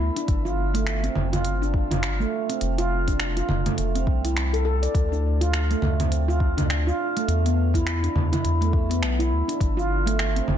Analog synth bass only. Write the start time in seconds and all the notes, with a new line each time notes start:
0.00 D2
0.28 G1
1.16 G1
2.61 F1
3.49 F1
3.78 F1
4.07 C2
4.95 D2
5.82 D2
7.28 E2
8.15 E2
8.44 E2
9.03 B1
9.32 D2
9.61 G1
10.48 G1